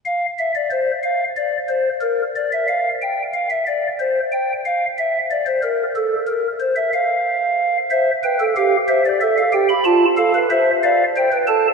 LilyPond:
\new Staff \with { instrumentName = "Pipe organ" } { \time 12/8 \key f \major \tempo 4. = 61 << { f''8 e''16 d''16 c''8 f''8 d''8 c''8 bes'8 d''16 e''16 f''8 g''8 f''16 e''16 d''8 | c''8 g''8 f''8 e''8 d''16 c''16 bes'8 a'8 bes'8 c''16 e''16 f''4. | e''8 g''8 f''8 e''16 d''16 e''16 f''16 g''16 b''16 a''8 f''8 e''8 f''8 g''8 a''8 | } \\ { r1. | r1. | c''8 b'16 a'16 g'8 c''8 a'8 g'8 f'8 a'16 b'16 c''8 d''8 c''16 b'16 a'8 | } >> }